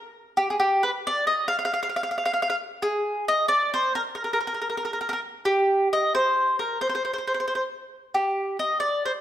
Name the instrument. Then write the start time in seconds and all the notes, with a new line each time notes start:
mandolin
0.37 G4
0.50 G#4
0.60 G4
0.83 B4
1.07 D5
1.27 D#5
1.48 F5
1.59 F5
1.65 F5
1.74 F5
1.83 F5
1.89 F5
1.96 F5
2.03 F5
2.11 F5
2.18 F5
2.25 F5
2.33 F5
2.42 F5
2.50 F5
2.82 G#4
3.28 D#5
3.48 D5
3.74 C5
3.95 A#4
4.15 A#4
4.24 A#4
4.33 A#4
4.40 A#4
4.47 A#4
4.54 A#4
4.62 A#4
4.70 A#4
4.77 A#4
4.85 A#4
4.93 A#4
5.01 A#4
5.09 A#4
5.13 A#4
5.45 G4
5.93 D#5
6.15 C5
6.59 A#4
6.81 C5
6.89 C5
6.95 C5
7.05 C5
7.13 C5
7.18 C5
7.27 C5
7.34 C5
7.40 C5
7.48 C5
7.55 C5
8.14 G4
8.59 D#5
8.80 D5
9.05 C5